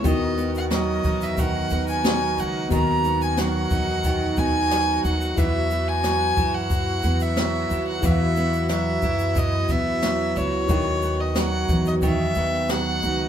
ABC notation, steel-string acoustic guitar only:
X:1
M:4/4
L:1/8
Q:1/4=90
K:B
V:1 name="Steel-string acoustic guitar" clef=bass
D, B, F, D D, B, F, D | D, B, F, D D, B, F, D | E, B, F, E2 B, F, E | E, B, F, E E, B, F, E |
D, B, F,2 D, B, F, D |]